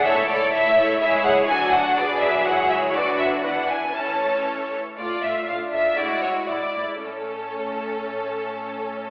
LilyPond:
<<
  \new Staff \with { instrumentName = "Violin section" } { \time 2/4 \key a \major \tempo 4 = 120 e''8 d''8 e''4 | e''8 fis''8 gis''8 fis''8 | d''8 e''8 fis''8 e''8 | d''8 e''8 fis''8 gis''8 |
a''4 r4 | d''8 e''8 f''8 e''8 | d''8 cis''8 d''4 | a'2~ |
a'2 | }
  \new Staff \with { instrumentName = "Violin section" } { \time 2/4 \key a \major <a' cis''>8 <a' cis''>8 <a' cis''>8 <a' cis''>8 | <e' cis''>4 <fis' a'>4 | <b' d''>4 <gis' cis''>4 | <fis' b'>4 b'4 |
<a' cis''>4. r8 | f'4 d'4 | fis'4 e'8 r8 | <cis' a'>2~ |
<cis' a'>2 | }
  \new Staff \with { instrumentName = "Viola section" } { \time 2/4 \key a \major << { e'8 e'8 e'8 e'8 | e'4 d'4~ | d'4 e'4 | d'2 |
cis'4. r8 | f'8 f'8 f'8 f'8 | e'8 e'8 e'8 e'8 | cis'2~ |
cis'2 | } \\ { a8 a8 a8 a8 | gis4 fis4 | fis2~ | fis4 e4 |
e4. r8 | a8 a8 a8 a8 | gis8 gis8 gis8 gis8 | a2~ |
a2 | } >> }
  \new Staff \with { instrumentName = "Cello section" } { \clef bass \time 2/4 \key a \major a'4 e'4 | gis'4 fis'4 | gis'4 fis'4~ | fis'4 e'4 |
cis'4. r8 | a,8 a,8 a,8 a,8 | a,8 a,8 a,8 a,8 | a,2~ |
a,2 | }
  \new Staff \with { instrumentName = "Double bass section" } { \clef bass \time 2/4 \key a \major cis,4 cis,4 | cis,4 d,4 | b,,4 cis,4 | d,4 e,4 |
a,,4. r8 | r2 | r2 | r2 |
r2 | }
>>